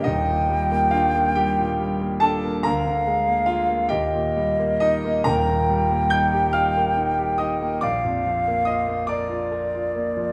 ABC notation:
X:1
M:6/8
L:1/16
Q:3/8=47
K:Eblyd
V:1 name="Flute"
g8- g2 z2 | f6 e6 | [K:Bb] g12 | f6 d6 |]
V:2 name="Grand piano"
[Ee]4 [Ff]2 [Gg]4 [Aa]2 | [Bb]4 [Ff]2 [Gg]4 [Ee]2 | [K:Bb] [Bb]4 [gg']2 [ff']4 [ee']2 | [dd']4 [ee']2 [dd']6 |]
V:3 name="Grand piano"
[E,,,E,,] B,, G, B, D B, G, B,, G, B, D B, | D,, D, _A, B,2 B, E,, B,, G, B,2 B, | [K:Bb] [E,,,E,,] B,, G, B, E G E B, E G E B, | B,,, F,, F, B, F B, B F B F B, F, |]